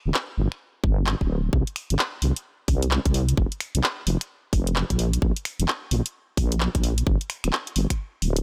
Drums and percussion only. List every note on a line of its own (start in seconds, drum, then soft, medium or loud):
0.14 clap loud
0.52 finger snap soft
0.84 kick loud
1.07 clap loud
1.21 kick medium
1.53 kick loud
1.67 closed hi-hat soft
1.76 finger snap soft
1.76 open hi-hat loud
1.90 closed hi-hat medium
1.99 clap loud
2.22 open hi-hat medium
2.36 closed hi-hat medium
2.68 kick loud
2.68 open hi-hat medium
2.82 closed hi-hat medium
2.91 clap loud
3.05 kick medium
3.05 closed hi-hat soft
3.14 open hi-hat medium
3.29 closed hi-hat medium
3.37 kick loud
3.52 closed hi-hat soft
3.60 finger snap soft
3.60 open hi-hat loud
3.75 closed hi-hat medium
3.84 clap loud
4.07 open hi-hat loud
4.21 finger snap soft
4.21 closed hi-hat medium
4.53 kick medium
4.53 open hi-hat loud
4.67 closed hi-hat medium
4.76 clap loud
4.90 kick medium
4.90 closed hi-hat medium
4.99 open hi-hat loud
5.13 closed hi-hat medium
5.22 kick loud
5.36 closed hi-hat soft
5.45 finger snap medium
5.45 open hi-hat loud
5.60 closed hi-hat medium
5.68 clap loud
5.91 open hi-hat loud
6.06 closed hi-hat medium
6.37 kick medium
6.37 open hi-hat loud
6.52 closed hi-hat medium
6.61 clap loud
6.75 kick medium
6.75 closed hi-hat medium
6.84 open hi-hat loud
6.98 closed hi-hat medium
7.07 kick loud
7.21 closed hi-hat soft
7.30 finger snap medium
7.30 open hi-hat loud
7.44 finger snap medium
7.44 closed hi-hat medium
7.53 clap loud
7.67 closed hi-hat soft
7.76 open hi-hat loud
7.90 finger snap soft
7.90 kick medium
7.90 closed hi-hat medium
8.22 open hi-hat loud
8.36 closed hi-hat medium